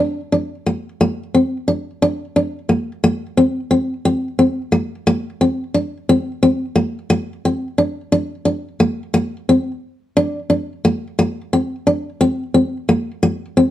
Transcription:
Already playing: D4
0.32 D4
0.66 A#3
1.01 A#3
1.34 C4
1.68 D4
2.02 D4
2.36 D4
2.69 A#3
3.04 A#3
3.37 C4
3.71 C4
4.05 C4
4.39 C4
4.72 A#3
5.07 A#3
5.41 C4
5.74 D4
6.09 C4
6.43 C4
6.76 A#3
7.10 A#3
7.45 C4
7.78 D4
8.12 D4
8.45 D4
8.80 A#3
9.14 A#3
9.49 C4
10.17 D4
10.50 D4
10.85 A#3
11.19 A#3
11.53 C4
11.87 D4
12.21 C4
12.54 C4
12.89 A#3
13.23 A#3
13.57 C4

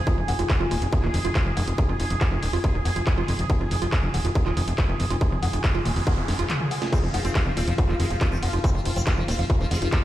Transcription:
Already playing: G#4
0.07 F4, kick, closed hi-hat
0.18 F1
0.28 F1 F#5, open hi-hat
0.39 F1 F4, closed hi-hat
0.50 kick, clap, closed hi-hat
0.60 F1 F4
0.71 D#1 F4, open hi-hat
0.82 F1, closed hi-hat
0.93 F#5, kick, closed hi-hat
1.03 D#1 F4, clap
1.14 F1, open hi-hat
1.25 F1 F4, closed hi-hat
1.35 F4, kick, clap, closed hi-hat
1.46 F1
1.57 F1 F#5, open hi-hat
1.68 F1 F4, closed hi-hat
1.78 kick, closed hi-hat
1.89 F1 F4
2.00 F1 F4, open hi-hat
2.10 F1, closed hi-hat
2.21 F#5, kick, clap, closed hi-hat
2.32 F1 F4
2.43 D#1, open hi-hat
2.53 F1 F4, open hi-hat
2.64 F4, kick, closed hi-hat
2.75 D#1
2.85 F1 F#5, open hi-hat
2.96 F1 F4, closed hi-hat
3.07 kick, clap, closed hi-hat
3.18 F1 F4
3.28 F1 F4, open hi-hat
3.39 F1, closed hi-hat
3.50 F#5, kick, closed hi-hat
3.60 F1 F4
3.71 F1, open hi-hat
3.82 F1 F4, closed hi-hat
3.93 F4, kick, clap, closed hi-hat
4.03 F1
4.14 D#1 F#5, open hi-hat
4.25 F1 F4, closed hi-hat
4.35 kick, closed hi-hat
4.46 D#1 F4, clap
4.57 F1 F4, open hi-hat
4.68 F1, closed hi-hat
4.78 F#5, kick, clap, closed hi-hat
4.89 F1 F4
5.00 F1, open hi-hat
5.10 F1 F4, closed hi-hat
5.21 F4, kick, closed hi-hat, noise sweep
5.32 F1
5.43 F1 F#5, open hi-hat
5.53 F1 F4, closed hi-hat
5.64 kick, clap, closed hi-hat
5.75 F1 F4
5.85 D#1 F4, open hi-hat
5.96 F1, open hi-hat
6.07 F#5, kick, closed hi-hat
6.18 F1 F4
6.28 F1, snare, open hi-hat
6.39 F1 F4, closed hi-hat
6.50 F4, clap, closed hi-hat, mid tom
6.60 mid tom
6.71 F#5, open hi-hat
6.82 F4, snare, closed hi-hat
6.93 C4 F4, kick, closed hi-hat, crash, ride
7.03 F1 F3
7.14 F1 F3 F#5, open hi-hat, ride
7.25 F1 C4 F4, closed hi-hat
7.35 F3, kick, clap, closed hi-hat
7.46 F1 F3 F5
7.57 D#1 C4 F4, open hi-hat, ride
7.68 F1 F3, closed hi-hat
7.78 F#5, kick, closed hi-hat, ride
7.89 D#1 F3 F4, clap
8.00 F1 G#3, open hi-hat, ride
8.10 F1 F3 F5, closed hi-hat
8.21 F3 F4, kick, clap, closed hi-hat, ride
8.32 F1 F3
8.43 F1 F3 F#5, open hi-hat, ride
8.53 F1 F3 F4, closed hi-hat
8.64 C4, kick, closed hi-hat, ride
8.75 F1 F3 F5
8.85 F1 F3 F4, open hi-hat, ride
8.96 F1 C4, closed hi-hat
9.07 F3 F#5, kick, clap, closed hi-hat, ride
9.18 F1 F3 F4
9.28 D#1 C4, open hi-hat, ride
9.39 F1 F3 F5, open hi-hat
9.50 F4, kick, closed hi-hat, ride
9.60 D#1 F3
9.71 F1 G#3 F#5, open hi-hat, ride
9.82 F1 F3 F4, closed hi-hat
9.93 F3, kick, clap, closed hi-hat, ride

